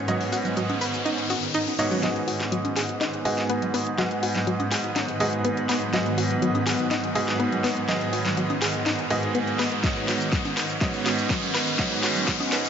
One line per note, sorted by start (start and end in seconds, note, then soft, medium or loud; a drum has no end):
0.00 1.99 G#2 medium
0.00 1.99 D#3 medium
0.00 1.99 B3 medium
0.00 1.99 C#4 medium
0.00 riser medium
0.08 1.27 G#2 medium
0.08 0.16 F#3 medium
0.08 1.27 B3 medium
0.08 1.27 F#4 medium
0.08 1.27 C#5 medium
0.08 1.27 D#5 medium
0.08 closed hi-hat medium
0.08 shaker soft
0.21 open hi-hat medium
0.32 0.41 F#4 medium
0.32 open hi-hat loud
0.32 shaker medium
0.45 closed hi-hat soft
0.45 low conga medium
0.45 shaker soft
0.57 0.65 F#3 medium
0.57 closed hi-hat medium
0.57 shaker soft
0.69 closed hi-hat soft
0.69 high conga loud
0.69 high woodblock medium
0.81 0.90 B4 medium
0.81 open hi-hat loud
0.81 shaker medium
0.94 closed hi-hat soft
0.94 shaker soft
1.06 1.14 D#4 medium
1.06 closed hi-hat medium
1.06 high conga medium
1.06 shaker soft
1.18 closed hi-hat soft
1.30 1.35 F#4 medium
1.30 open hi-hat loud
1.30 high conga medium
1.30 high woodblock medium
1.30 shaker medium
1.43 closed hi-hat soft
1.43 shaker soft
1.54 1.59 D#4 loud
1.54 closed hi-hat medium
1.54 shaker soft
1.67 closed hi-hat soft
1.67 high conga medium
1.79 2.00 G#2 medium
1.79 2.00 B3 medium
1.79 1.84 D#4 medium
1.79 2.00 F#4 medium
1.79 2.00 C#5 medium
1.79 2.00 D#5 medium
1.79 open hi-hat medium
1.79 high woodblock medium
1.79 shaker medium
1.91 1.99 F#3 medium
1.91 closed hi-hat soft
1.91 shaker soft
2.03 3.22 G#2 medium
2.03 12.69 G#2 medium
2.03 12.69 D#3 medium
2.03 2.12 F#3 medium
2.03 9.80 F#3 medium
2.03 3.22 B3 medium
2.03 9.80 B3 medium
2.03 3.22 F#4 medium
2.03 3.22 G#4 medium
2.03 3.22 D#5 medium
2.03 snare soft
2.03 closed hi-hat medium
2.03 riser medium
2.16 closed hi-hat soft
2.28 2.36 F#4 medium
2.28 open hi-hat loud
2.40 snare soft
2.40 closed hi-hat soft
2.52 2.60 F#3 medium
2.52 closed hi-hat medium
2.65 closed hi-hat soft
2.65 high conga medium
2.65 high woodblock medium
2.76 2.85 G#4 medium
2.76 snare medium
2.76 open hi-hat loud
2.89 closed hi-hat soft
3.01 3.09 D#4 medium
3.01 snare medium
3.01 closed hi-hat medium
3.01 high conga medium
3.13 closed hi-hat soft
3.25 3.96 G#2 medium
3.25 3.96 B3 medium
3.25 3.96 F#4 medium
3.25 3.96 G#4 medium
3.25 3.34 G#4 medium
3.25 3.96 D#5 loud
3.25 open hi-hat loud
3.25 high woodblock medium
3.38 snare soft
3.38 closed hi-hat soft
3.50 3.58 B3 loud
3.50 closed hi-hat medium
3.62 closed hi-hat soft
3.62 low conga medium
3.74 3.79 B3 loud
3.74 open hi-hat loud
3.87 closed hi-hat soft
3.98 5.18 G#2 medium
3.98 4.07 F#3 medium
3.98 5.18 B3 medium
3.98 5.17 F#4 medium
3.98 5.18 G#4 medium
3.98 5.18 D#5 medium
3.98 snare medium
3.98 closed hi-hat medium
4.11 closed hi-hat soft
4.23 4.31 F#4 medium
4.23 open hi-hat loud
4.35 snare soft
4.35 closed hi-hat soft
4.35 low conga medium
4.47 4.56 F#3 medium
4.47 closed hi-hat medium
4.60 closed hi-hat soft
4.60 high conga medium
4.60 high woodblock medium
4.71 4.80 G#4 medium
4.71 snare medium
4.71 open hi-hat loud
4.84 closed hi-hat soft
4.96 5.04 D#4 medium
4.96 snare medium
4.96 closed hi-hat medium
4.96 high conga medium
5.08 closed hi-hat soft
5.20 5.91 G#2 medium
5.20 5.91 B3 medium
5.20 5.91 F#4 medium
5.20 5.91 G#4 medium
5.20 5.29 G#4 medium
5.20 5.91 D#5 loud
5.20 open hi-hat loud
5.20 high woodblock medium
5.33 closed hi-hat soft
5.45 5.53 B3 loud
5.45 closed hi-hat medium
5.57 closed hi-hat soft
5.69 5.74 B3 loud
5.69 snare medium
5.69 open hi-hat loud
5.69 high woodblock medium
5.82 closed hi-hat soft
5.93 7.13 G#2 medium
5.93 6.02 F#3 medium
5.93 7.13 B3 medium
5.93 7.13 F#4 medium
5.93 7.13 G#4 medium
5.93 7.13 D#5 medium
5.93 snare medium
5.93 closed hi-hat medium
6.06 closed hi-hat soft
6.18 6.26 F#4 medium
6.18 open hi-hat loud
6.30 closed hi-hat soft
6.42 6.51 F#3 medium
6.42 closed hi-hat medium
6.55 closed hi-hat soft
6.55 high conga medium
6.55 high woodblock medium
6.67 6.75 G#4 medium
6.67 snare medium
6.67 open hi-hat loud
6.79 closed hi-hat soft
6.91 6.99 D#4 medium
6.91 snare medium
6.91 closed hi-hat medium
6.91 high conga medium
7.04 closed hi-hat soft
7.15 7.86 G#2 medium
7.15 7.86 B3 medium
7.15 7.86 F#4 medium
7.15 7.24 G#4 medium
7.15 7.86 G#4 medium
7.15 7.86 D#5 loud
7.15 open hi-hat loud
7.15 high woodblock medium
7.28 snare medium
7.28 closed hi-hat soft
7.40 7.48 B3 loud
7.40 closed hi-hat medium
7.52 closed hi-hat soft
7.52 low conga medium
7.64 7.69 B3 loud
7.64 snare medium
7.64 open hi-hat loud
7.77 closed hi-hat soft
7.88 9.08 G#2 medium
7.88 7.97 F#3 medium
7.88 9.08 B3 medium
7.88 9.08 F#4 medium
7.88 9.08 G#4 medium
7.88 9.08 D#5 medium
7.88 snare medium
7.88 closed hi-hat medium
8.01 closed hi-hat soft
8.13 8.21 F#4 medium
8.13 open hi-hat loud
8.25 snare medium
8.25 closed hi-hat soft
8.25 low conga medium
8.37 8.46 F#3 medium
8.37 closed hi-hat medium
8.50 closed hi-hat soft
8.50 high conga medium
8.50 high woodblock medium
8.62 8.70 G#4 medium
8.62 snare medium
8.62 open hi-hat loud
8.74 closed hi-hat soft
8.86 8.94 D#4 medium
8.86 snare medium
8.86 closed hi-hat medium
8.86 high conga medium
8.99 closed hi-hat soft
9.10 9.81 G#2 medium
9.10 9.81 B3 medium
9.10 9.81 F#4 medium
9.10 9.19 G#4 medium
9.10 9.81 G#4 medium
9.10 9.81 D#5 loud
9.10 open hi-hat loud
9.10 high woodblock medium
9.23 closed hi-hat soft
9.35 9.43 B3 loud
9.35 closed hi-hat medium
9.47 closed hi-hat soft
9.59 9.64 B3 loud
9.59 snare medium
9.59 open hi-hat loud
9.59 high woodblock medium
9.72 closed hi-hat soft
9.84 10.79 G#2 medium
9.84 9.92 F#3 medium
9.84 10.79 B3 medium
9.84 12.69 B3 medium
9.84 12.69 C#4 medium
9.84 10.79 F#4 medium
9.84 10.79 C#5 medium
9.84 10.79 D#5 medium
9.84 kick loud
9.84 snare medium
9.84 closed hi-hat medium
9.84 shaker medium
9.96 closed hi-hat soft
9.96 shaker soft
10.08 10.16 F#4 medium
10.08 snare medium
10.08 open hi-hat loud
10.21 closed hi-hat soft
10.21 shaker medium
10.32 10.41 F#3 medium
10.32 kick loud
10.32 snare medium
10.32 closed hi-hat medium
10.32 shaker medium
10.45 closed hi-hat soft
10.45 high conga medium
10.45 high woodblock medium
10.45 shaker soft
10.57 10.65 B4 medium
10.57 snare medium
10.57 open hi-hat loud
10.69 closed hi-hat soft
10.69 shaker medium
10.81 11.77 G#2 medium
10.81 10.90 F#3 medium
10.81 11.77 B3 medium
10.81 11.77 F#4 medium
10.81 11.77 C#5 medium
10.81 11.77 D#5 medium
10.81 kick loud
10.81 snare medium
10.81 closed hi-hat medium
10.81 high conga medium
10.81 shaker medium
10.94 closed hi-hat soft
10.94 shaker soft
11.06 11.14 F#4 medium
11.06 snare medium
11.06 open hi-hat loud
11.06 high woodblock medium
11.18 closed hi-hat soft
11.18 shaker medium
11.30 11.38 F#3 medium
11.30 kick loud
11.30 snare medium
11.30 closed hi-hat medium
11.30 shaker medium
11.43 closed hi-hat soft
11.43 low conga medium
11.43 shaker soft
11.54 11.63 B4 medium
11.54 snare medium
11.54 open hi-hat loud
11.67 closed hi-hat soft
11.67 shaker medium
11.79 12.69 G#2 medium
11.79 11.87 F#3 medium
11.79 12.69 B3 medium
11.79 12.69 F#4 medium
11.79 12.69 C#5 medium
11.79 12.69 D#5 medium
11.79 kick loud
11.79 snare medium
11.79 closed hi-hat medium
11.79 shaker medium
11.91 closed hi-hat soft
11.91 shaker soft
12.03 12.12 F#4 medium
12.03 snare medium
12.03 open hi-hat loud
12.16 closed hi-hat soft
12.16 low conga medium
12.16 shaker medium
12.28 12.36 F#3 medium
12.28 kick loud
12.28 snare medium
12.28 closed hi-hat medium
12.28 shaker medium
12.40 closed hi-hat soft
12.40 high conga medium
12.40 high woodblock medium
12.40 shaker soft
12.52 12.60 B4 medium
12.52 snare medium
12.52 open hi-hat loud
12.65 closed hi-hat soft
12.65 shaker medium